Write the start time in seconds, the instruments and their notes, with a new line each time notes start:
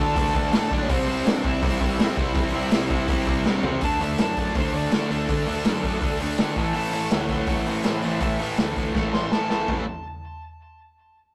0.00 picked electric bass D2, distorted electric guitar D3 A3 D4, lead electric guitar A4 A5
0.16 picked electric bass D2, distorted electric guitar D3 A3 D4, kick, open hi-hat
0.35 picked electric bass D2, distorted electric guitar D3 A3 D4, kick
0.52 picked electric bass A2, distorted electric guitar D3 A3 D4, snare, open hi-hat
0.71 picked electric bass B1, distorted electric guitar D3 A3 D4, lead electric guitar D4 D5, kick
0.82 lead electric guitar C#4 C#5
0.89 picked electric bass C2, distorted electric guitar C3 G3 C4, lead electric guitar C4, kick, open hi-hat
0.93 lead electric guitar C5
1.06 picked electric bass C2, distorted electric guitar C3 G3 C4
1.25 picked electric bass G2, distorted electric guitar C3 G3 C4, lead electric guitar D4, snare, open hi-hat
1.30 lead electric guitar D5
1.44 picked electric bass C2, distorted electric guitar C3 G3 C4, lead electric guitar E4 E5, kick
1.62 picked electric bass C2, distorted electric guitar C3 G3 C4, kick, open hi-hat
1.81 picked electric bass C2, distorted electric guitar C3 G3 C4, kick
1.98 picked electric bass A2, distorted electric guitar C3 G3 C4, snare, open hi-hat
2.17 picked electric bass C2, distorted electric guitar C3 G3 C4, kick
2.35 picked electric bass C2, distorted electric guitar C3 G3 C4, kick, open hi-hat
2.53 picked electric bass C2, distorted electric guitar C3 G3 C4
2.71 picked electric bass C2, distorted electric guitar C3 G3 C4, snare, open hi-hat
2.90 picked electric bass C2, distorted electric guitar C3 G3 C4, kick
3.08 picked electric bass C2, distorted electric guitar C3 G3 C4, kick, open hi-hat
3.27 picked electric bass C2, distorted electric guitar C3 G3 C4, kick
3.45 picked electric bass G2, distorted electric guitar C3 G3 C4, snare
3.63 picked electric bass C2, distorted electric guitar C3 G3 C4, floor tom
3.81 picked electric bass D2, distorted electric guitar D3 A3 D4, lead electric guitar A5, kick, open hi-hat
4.00 picked electric bass D2, distorted electric guitar D3 A3 D4, lead electric guitar E5, open hi-hat
4.18 picked electric bass F#2, distorted electric guitar D3 A3 D4, lead electric guitar A5, snare, open hi-hat
4.37 distorted electric guitar D3 A3 D4, lead electric guitar D5, kick, open hi-hat
4.55 picked electric bass D2, distorted electric guitar D3 A3 D4, lead electric guitar C5, kick, open hi-hat
4.73 distorted electric guitar D3 A3 D4, lead electric guitar D5, open hi-hat
4.92 distorted electric guitar D3 A3 D4, picked electric bass D3, lead electric guitar A4, snare, open hi-hat
5.11 picked electric bass D2, distorted electric guitar D3 A3 D4, lead electric guitar A4, open hi-hat
5.29 picked electric bass D2, distorted electric guitar D3 A3 D4, kick, open hi-hat
5.47 picked electric bass D2, distorted electric guitar D3 A3 D4, open hi-hat
5.65 picked electric bass F#2, distorted electric guitar D3 A3 D4, snare, open hi-hat
5.84 distorted electric guitar D3 A3 D4, kick, open hi-hat
6.02 picked electric bass D2, distorted electric guitar D3 A3 D4, kick, open hi-hat
6.20 distorted electric guitar D3 A3 D4, open hi-hat
6.38 picked electric bass D3, distorted electric guitar D3 A3 D4, snare, open hi-hat
6.56 picked electric bass A1, distorted electric guitar A2 E3 A3, lead electric guitar E5 A5, kick, open hi-hat
6.74 picked electric bass A1, distorted electric guitar A2 E3 A3, lead electric guitar E5 A5, open hi-hat
6.92 picked electric bass A1, distorted electric guitar A2 E3 A3, lead electric guitar E5 A5, open hi-hat
7.11 picked electric bass D2, distorted electric guitar A2 E3 A3, lead electric guitar C#5 F#5, snare, open hi-hat
7.28 distorted electric guitar A2 E3 A3, lead electric guitar C#5 F#5, kick, open hi-hat
7.47 picked electric bass A1, distorted electric guitar A2 E3 A3, lead electric guitar C#5 F#5, kick, open hi-hat
7.65 distorted electric guitar A2 E3 A3, lead electric guitar C5 E5, open hi-hat
7.84 picked electric bass A2, distorted electric guitar A2 E3 A3, lead electric guitar C5 E5, snare, open hi-hat
8.02 picked electric bass A1, distorted electric guitar A2 E3 A3, lead electric guitar C5 E5, open hi-hat
8.20 picked electric bass A1, distorted electric guitar A2 E3 A3, lead electric guitar E5, kick, open hi-hat
8.39 picked electric bass A1, distorted electric guitar A2 E3 A3, open hi-hat
8.57 picked electric bass D2, distorted electric guitar A2 E3 A3, snare, open hi-hat
8.76 distorted electric guitar A2 E3 A3, kick, open hi-hat
8.95 picked electric bass A1, distorted electric guitar A2 E3 A3, kick, snare
9.14 distorted electric guitar A2 E3 A3, lead electric guitar C6, snare
9.31 picked electric bass A2, distorted electric guitar A2 E3 A3, lead electric guitar A5, snare
9.49 picked electric bass A1, distorted electric guitar A2 E3 A3, lead electric guitar A5, snare
9.68 picked electric bass A1, distorted electric guitar A2 E3 A3, kick, floor tom